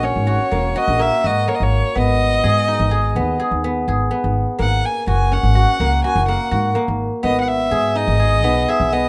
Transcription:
0.00 0.11 A#1 medium
0.00 0.51 A#3 medium
0.00 2.93 C#4 medium
0.00 0.26 F#4 medium
0.00 0.86 G#4 medium
0.04 0.78 C#5 medium
0.16 0.37 G#1 medium
0.27 0.75 F#4 medium
0.51 0.73 E1 medium
0.51 0.99 A#3 medium
0.76 1.24 F#4 medium
0.76 1.03 D#5 medium
0.88 1.09 A#1 medium
0.99 1.47 A#3 medium
0.99 1.27 E5 loud
1.24 1.45 G#2 medium
1.24 3.68 F#4 medium
1.24 1.50 D#5 medium
1.48 2.01 A#3 medium
1.48 1.56 C#5 medium
1.55 1.64 D#5 medium
1.60 1.81 G#1 medium
1.60 1.98 C#5 medium
1.95 2.38 G#1 medium
1.95 3.16 B3 medium
1.95 3.40 D#5 loud
2.44 2.75 G#2 medium
2.44 2.91 G#4 medium
2.68 5.38 D#4 medium
2.80 3.17 G#1 medium
2.91 3.39 G#4 medium
3.15 3.37 D#2 medium
3.15 3.64 B3 medium
3.40 3.88 G#4 medium
3.51 3.83 D#2 medium
3.64 4.10 B3 medium
3.88 4.09 G#1 medium
3.88 6.16 G#4 medium
4.11 4.65 B3 medium
4.24 4.45 G#1 medium
4.59 4.81 G#1 medium
4.59 5.80 A#3 medium
4.59 4.86 F#5 loud
4.85 5.08 G#5 medium
5.07 5.39 F#1 medium
5.07 5.55 F#4 medium
5.07 5.35 G#5 medium
5.32 8.21 C#4 medium
5.32 6.05 F#5 medium
5.43 5.65 G#1 medium
5.55 6.04 F#4 medium
5.80 6.01 C#2 medium
5.80 6.28 A#3 medium
6.04 6.51 F#4 medium
6.04 6.27 G#5 medium
6.15 6.37 F#1 medium
6.28 6.75 A#3 medium
6.28 6.73 F#5 medium
6.51 6.73 G#2 medium
6.51 8.95 F#4 medium
6.75 7.29 A#3 medium
6.88 7.09 G#1 medium
7.23 7.66 G#1 medium
7.23 8.44 B3 medium
7.23 7.40 D#5 medium
7.40 7.49 F#5 medium
7.48 7.98 E5 loud
7.71 8.03 G#2 medium
7.71 8.19 G#4 medium
7.95 9.09 D#4 medium
7.95 8.70 D#5 loud
8.08 8.43 G#1 medium
8.20 8.68 G#4 medium
8.43 8.64 B1 medium
8.43 8.92 B3 medium
8.68 9.09 G#4 medium
8.68 8.94 E5 medium
8.80 9.09 B1 medium
8.92 9.09 B3 medium
8.92 9.09 D#5 medium

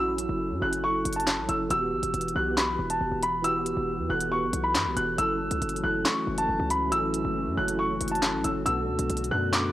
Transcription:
0.00 0.28 A1 loud
0.00 0.59 F#3 loud
0.00 0.61 C#4 medium
0.00 0.63 E4 medium
0.00 1.71 F#4 loud
0.00 0.64 A4 loud
0.00 0.58 E6 loud
0.18 closed hi-hat medium
0.29 0.52 F#1 loud
0.51 0.61 F#2 loud
0.59 1.03 F#1 loud
0.59 1.29 F#3 medium
0.59 1.30 C#4 medium
0.59 1.31 E4 medium
0.59 0.81 F#6 medium
0.64 1.32 A4 medium
0.73 closed hi-hat medium
0.84 1.14 C#6 medium
1.05 1.39 F#1 loud
1.05 closed hi-hat medium
1.13 1.47 A5 medium
1.13 closed hi-hat medium
1.20 closed hi-hat medium
1.27 snare loud
1.27 clap medium
1.27 closed hi-hat medium
1.38 1.48 A1 loud
1.46 1.70 F#1 loud
1.46 1.65 F#3 medium
1.46 1.65 C#4 medium
1.46 1.66 E4 medium
1.46 1.68 E6 medium
1.46 closed hi-hat medium
1.51 1.67 A4 medium
1.68 1.94 E1 loud
1.68 2.21 E3 loud
1.68 2.21 B3 medium
1.68 2.22 F#4 loud
1.68 2.32 E6 loud
1.68 closed hi-hat medium
1.73 2.23 G4 loud
1.92 2.02 G1 loud
2.03 2.13 E1 loud
2.03 closed hi-hat medium
2.14 2.35 E1 loud
2.14 closed hi-hat medium
2.21 closed hi-hat medium
2.28 closed hi-hat soft
2.33 2.77 B1 loud
2.33 3.03 E3 medium
2.33 3.04 B3 medium
2.33 3.05 F#4 medium
2.33 2.55 F#6 medium
2.38 3.05 G4 medium
2.57 2.88 B5 medium
2.57 snare loud
2.57 clap medium
2.57 closed hi-hat medium
2.79 3.00 E1 loud
2.90 3.21 A5 medium
2.90 closed hi-hat medium
3.01 3.11 E1 loud
3.12 3.74 E1 loud
3.23 3.42 B5 medium
3.23 closed hi-hat medium
3.42 3.95 E3 loud
3.42 3.95 B3 medium
3.42 3.96 F#4 medium
3.42 4.06 E6 loud
3.42 closed hi-hat medium
3.47 3.97 G4 loud
3.66 closed hi-hat medium
3.77 4.00 E1 loud
3.99 4.09 E2 loud
4.07 4.44 E1 loud
4.07 4.77 E3 medium
4.07 4.78 B3 medium
4.07 4.79 F#4 medium
4.07 4.29 F#6 medium
4.12 4.79 A4 medium
4.21 closed hi-hat medium
4.32 4.62 C#6 medium
4.42 4.53 G1 loud
4.53 4.76 B1 loud
4.53 closed hi-hat medium
4.64 4.94 B5 medium
4.75 4.87 G2 loud
4.75 snare loud
4.75 clap medium
4.75 closed hi-hat medium
4.86 4.96 B1 loud
4.94 5.17 E1 loud
4.94 5.13 E3 medium
4.94 5.13 B3 medium
4.94 5.14 F#4 medium
4.94 5.16 F#6 medium
4.94 closed hi-hat medium
4.99 5.15 A4 medium
5.16 5.50 F#1 loud
5.16 8.63 E3 medium
5.16 5.69 F#3 medium
5.16 8.63 A3 medium
5.16 5.69 C#4 medium
5.16 8.63 C#4 medium
5.16 5.70 E4 medium
5.16 9.72 F#4 medium
5.16 5.80 E6 loud
5.16 closed hi-hat medium
5.21 5.71 A4 loud
5.51 5.61 C#2 loud
5.51 closed hi-hat medium
5.62 5.83 F#1 loud
5.62 closed hi-hat medium
5.69 closed hi-hat medium
5.76 closed hi-hat soft
5.81 6.04 F#1 loud
5.81 6.51 F#3 medium
5.81 6.52 C#4 medium
5.81 6.53 E4 medium
5.81 6.03 F#6 medium
5.86 6.53 A4 medium
6.05 6.36 C#6 medium
6.05 snare loud
6.05 clap medium
6.05 closed hi-hat medium
6.27 6.48 F#1 loud
6.38 6.69 A5 medium
6.38 closed hi-hat medium
6.49 6.59 F#1 loud
6.60 6.94 C#2 loud
6.70 6.90 B5 medium
6.70 closed hi-hat medium
6.90 7.23 A1 loud
6.90 7.42 F#3 loud
6.90 7.43 C#4 medium
6.90 7.44 E4 loud
6.90 7.53 E6 loud
6.90 closed hi-hat medium
6.95 7.45 A4 loud
7.14 closed hi-hat medium
7.25 7.48 F#1 loud
7.47 7.57 F#2 loud
7.55 7.99 F#1 loud
7.55 8.25 F#3 medium
7.55 8.26 C#4 medium
7.55 8.26 E4 medium
7.55 7.77 F#6 medium
7.60 8.27 A4 medium
7.68 closed hi-hat medium
7.79 8.10 C#6 medium
8.01 8.35 F#1 loud
8.01 closed hi-hat medium
8.08 8.42 A5 medium
8.08 closed hi-hat medium
8.15 closed hi-hat medium
8.22 snare loud
8.22 clap medium
8.22 closed hi-hat medium
8.34 8.44 A1 loud
8.42 8.65 F#1 loud
8.42 8.60 F#3 medium
8.42 8.61 C#4 medium
8.42 8.62 E4 medium
8.42 8.64 E6 medium
8.42 closed hi-hat medium
8.47 8.63 A4 medium
8.64 8.90 B1 loud
8.64 9.16 B2 medium
8.64 9.72 D3 medium
8.64 9.72 A3 medium
8.64 9.17 B3 loud
8.64 9.72 B3 medium
8.64 9.18 D4 medium
8.64 9.27 E6 loud
8.64 closed hi-hat medium
8.68 9.19 A4 loud
8.88 8.98 D2 loud
8.99 9.09 B1 loud
8.99 closed hi-hat medium
9.10 9.31 B1 loud
9.10 closed hi-hat medium
9.17 closed hi-hat medium
9.24 closed hi-hat soft
9.29 9.72 F#2 loud
9.29 9.72 B2 medium
9.29 9.72 B3 medium
9.29 9.72 D4 medium
9.29 9.51 F#6 medium
9.34 9.72 A4 medium
9.53 9.72 D6 medium
9.53 snare loud
9.53 clap medium
9.53 closed hi-hat medium

